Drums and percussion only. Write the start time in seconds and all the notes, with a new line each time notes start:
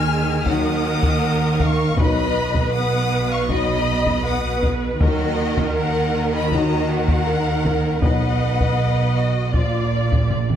0.46 taiko
1.03 taiko
1.60 taiko
1.97 taiko
2.55 taiko
3.49 taiko
4.06 taiko
4.63 taiko
5.01 taiko
5.58 taiko
6.52 taiko
7.08 taiko
7.65 taiko
8.02 taiko
8.61 taiko
9.54 taiko
10.12 taiko
10.31 taiko low-mid
10.50 taiko mid